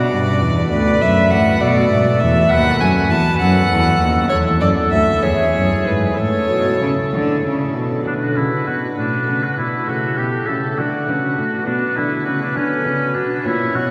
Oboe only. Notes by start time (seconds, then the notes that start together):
Already playing: F#4
0.71 B4
1.61 A4
2.51 B4
3.40 A4
5.24 G#4
6.18 A4
8.07 D4
8.22 F#4
8.37 E4
8.66 F#4
8.97 D4
9.43 F#4
9.57 E4
9.88 F#4
10.17 G4
10.46 A4
10.78 F#4
11.66 D4
11.96 E4
12.26 F#4
12.42 D4
12.56 C#4
13.15 D4
13.46 E4
13.76 F#4